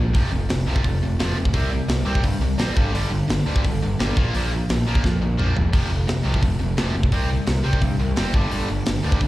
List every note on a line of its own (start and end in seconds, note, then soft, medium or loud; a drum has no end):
0.00 0.14 A#1 medium
0.00 0.13 A#2 medium
0.00 0.13 F3 medium
0.14 0.27 F1 medium
0.14 0.31 F2 medium
0.14 0.31 C3 medium
0.14 0.31 F3 medium
0.14 kick loud
0.14 open hi-hat medium
0.32 0.45 F1 medium
0.32 0.48 F2 medium
0.32 0.48 C3 medium
0.49 0.62 F1 medium
0.49 0.65 F2 medium
0.49 0.65 C3 medium
0.49 snare loud
0.49 open hi-hat medium
0.66 0.79 C2 medium
0.66 0.83 F2 medium
0.66 0.83 C3 medium
0.66 0.84 F3 loud
0.76 kick medium
0.84 0.97 F1 loud
0.84 1.00 F2 medium
0.84 1.00 C3 medium
0.84 kick loud
0.84 open hi-hat medium
1.02 1.14 F1 medium
1.02 1.18 F2 medium
1.02 1.18 C3 medium
1.19 1.32 F1 medium
1.19 1.35 F2 medium
1.19 1.36 C3 medium
1.19 1.36 F3 loud
1.19 snare loud
1.19 open hi-hat medium
1.36 1.49 F1 medium
1.36 1.52 F2 medium
1.36 1.52 C3 medium
1.45 kick medium
1.53 1.79 C2 medium
1.53 1.70 C3 medium
1.53 1.70 G3 loud
1.53 1.71 C4 medium
1.53 kick medium
1.53 open hi-hat medium
1.71 1.87 C3 medium
1.71 1.87 G3 medium
1.88 2.01 C2 medium
1.88 2.04 C3 medium
1.88 2.04 G3 medium
1.88 snare loud
1.88 open hi-hat medium
2.05 2.19 C2 medium
2.05 2.22 C3 medium
2.05 2.22 G3 medium
2.05 2.23 C4 medium
2.15 kick medium
2.23 2.36 G2 medium
2.23 2.40 C3 medium
2.23 2.40 G3 medium
2.23 kick medium
2.23 open hi-hat medium
2.40 2.53 C2 medium
2.40 2.57 C3 medium
2.40 2.58 G3 medium
2.58 2.71 A1 medium
2.58 2.75 C3 medium
2.58 2.75 G3 loud
2.58 2.76 C4 medium
2.58 snare loud
2.58 open hi-hat medium
2.76 2.89 G1 medium
2.76 2.93 G2 medium
2.76 2.93 D3 medium
2.76 2.94 G3 medium
2.76 kick loud
2.93 3.06 G1 medium
2.93 3.10 G2 medium
2.93 3.10 D3 medium
2.93 3.11 G3 loud
2.93 open hi-hat medium
3.10 3.23 G1 medium
3.10 3.27 G2 medium
3.10 3.27 D3 medium
3.28 3.41 G1 medium
3.28 3.44 G2 medium
3.28 3.45 D3 medium
3.28 snare loud
3.28 open hi-hat medium
3.46 3.59 D2 medium
3.46 3.63 G2 medium
3.46 3.63 D3 medium
3.46 3.63 G3 loud
3.56 kick medium
3.64 3.77 G1 loud
3.64 3.80 G2 medium
3.64 3.80 D3 medium
3.64 kick medium
3.64 open hi-hat medium
3.82 3.94 G1 medium
3.82 3.98 G2 medium
3.82 3.98 D3 medium
3.99 4.12 G1 medium
3.99 4.16 G2 medium
3.99 4.16 D3 medium
3.99 4.16 G3 medium
3.99 snare loud
3.99 open hi-hat medium
4.17 4.29 A#1 medium
4.17 4.33 A#2 medium
4.17 4.34 F3 medium
4.17 4.34 A#3 loud
4.17 kick loud
4.34 4.59 A#1 medium
4.34 4.51 A#2 medium
4.34 4.51 F3 loud
4.34 4.51 A#3 loud
4.34 open hi-hat medium
4.52 4.67 A#2 medium
4.52 4.68 F3 medium
4.69 4.82 A#1 loud
4.69 4.85 A#2 medium
4.69 4.85 F3 medium
4.69 snare loud
4.69 open hi-hat medium
4.87 5.00 A#1 medium
4.87 5.02 A#2 medium
4.87 5.03 F3 medium
4.87 5.04 A#3 medium
4.95 kick medium
5.04 5.16 F2 loud
5.04 5.19 A#2 medium
5.04 5.19 F3 medium
5.04 kick medium
5.04 snare medium
5.21 5.34 A#1 medium
5.21 5.36 A#2 medium
5.21 5.37 F3 medium
5.38 5.51 A#1 medium
5.38 5.54 A#2 medium
5.38 5.54 F3 loud
5.38 5.55 A#3 loud
5.38 mid tom medium
5.55 5.69 E1 medium
5.55 5.71 A#2 medium
5.55 5.71 F3 medium
5.55 floor tom medium
5.72 5.86 F1 medium
5.72 5.89 F2 medium
5.72 5.89 C3 loud
5.72 5.90 F3 loud
5.72 kick loud
5.72 open hi-hat medium
5.72 splash medium
5.90 6.03 F1 medium
5.90 6.06 F2 medium
5.90 6.06 C3 medium
6.07 6.20 F1 medium
6.07 6.23 F2 medium
6.07 6.23 C3 medium
6.07 snare loud
6.07 open hi-hat medium
6.24 6.37 C2 medium
6.24 6.41 F2 medium
6.24 6.41 C3 medium
6.24 6.41 F3 medium
6.34 kick medium
6.42 6.55 F1 medium
6.42 6.58 F2 medium
6.42 6.58 C3 medium
6.42 kick medium
6.42 open hi-hat medium
6.59 6.72 F1 medium
6.59 6.75 F2 medium
6.59 6.76 C3 medium
6.77 6.90 F1 medium
6.77 6.94 F2 medium
6.77 6.94 C3 medium
6.77 6.94 F3 medium
6.77 snare loud
6.77 open hi-hat soft
6.95 7.07 F1 medium
6.95 7.11 F2 medium
6.95 7.11 C3 medium
7.03 kick medium
7.12 7.37 C2 medium
7.12 7.29 C3 loud
7.12 7.29 G3 medium
7.12 7.29 C4 loud
7.12 kick loud
7.12 open hi-hat medium
7.30 7.45 C3 medium
7.30 7.46 G3 medium
7.47 7.60 C2 loud
7.47 7.62 C3 medium
7.47 7.63 G3 medium
7.47 snare loud
7.47 open hi-hat medium
7.63 7.77 C2 loud
7.63 7.80 C3 medium
7.63 7.80 G3 loud
7.63 7.81 C4 loud
7.73 kick medium
7.82 7.94 G2 loud
7.82 7.97 C3 medium
7.82 7.98 G3 medium
7.82 kick loud
7.82 open hi-hat medium
7.99 8.12 C2 medium
7.99 8.15 C3 medium
7.99 8.15 G3 medium
8.16 8.29 F#1 medium
8.16 8.33 C3 loud
8.16 8.33 G3 medium
8.16 8.33 C4 loud
8.16 snare loud
8.16 open hi-hat medium
8.34 8.46 G1 medium
8.34 8.50 G2 medium
8.34 8.51 D3 medium
8.34 8.51 G3 loud
8.34 kick loud
8.51 8.64 G1 medium
8.51 8.68 G2 medium
8.51 8.68 D3 medium
8.51 8.68 G3 loud
8.51 open hi-hat medium
8.69 8.82 G1 medium
8.69 8.84 G2 medium
8.69 8.85 D3 medium
8.86 8.99 G1 loud
8.86 9.02 G2 medium
8.86 9.02 D3 medium
8.86 snare loud
8.86 open hi-hat medium
9.03 9.17 D2 loud
9.03 9.20 G2 medium
9.03 9.20 D3 loud
9.03 9.20 G3 loud
9.12 kick medium
9.21 9.28 G1 loud
9.21 9.28 G2 medium
9.21 9.28 D3 medium
9.21 kick medium
9.21 open hi-hat medium